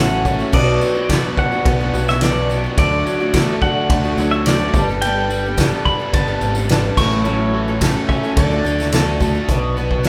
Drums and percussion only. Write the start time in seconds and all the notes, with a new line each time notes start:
0.12 tambourine
0.25 kick, tambourine
0.40 tambourine
0.53 kick, crash
0.81 tambourine
1.09 kick, snare, ride bell, tambourine
1.24 tambourine
1.37 kick, tambourine
1.65 kick, ride bell
1.95 tambourine
2.09 snare, tambourine
2.21 snare, ride bell, tambourine
2.37 tambourine
2.51 tambourine
2.78 kick, ride bell
3.07 tambourine
3.34 kick, snare, ride bell, tambourine
3.49 tambourine
3.62 kick, tambourine
3.90 kick, ride bell
4.18 tambourine
4.46 snare, ride bell, tambourine
4.60 tambourine
4.74 kick, tambourine
5.02 ride bell
5.30 tambourine
5.57 kick, snare, ride bell, tambourine
5.72 tambourine
5.86 kick, tambourine
6.13 kick, ride bell
6.41 tambourine
6.55 tambourine
6.69 snare, ride bell, tambourine
6.84 tambourine
6.97 kick, tambourine, crash
7.26 tambourine
7.81 kick, snare, ride bell, tambourine
8.09 kick, tambourine
8.24 tambourine
8.37 kick, ride bell
8.66 tambourine
8.80 snare, tambourine
8.92 snare, ride bell, tambourine
9.08 tambourine
9.21 kick, tambourine
9.48 kick, closed hi-hat
9.91 kick
10.04 snare, closed hi-hat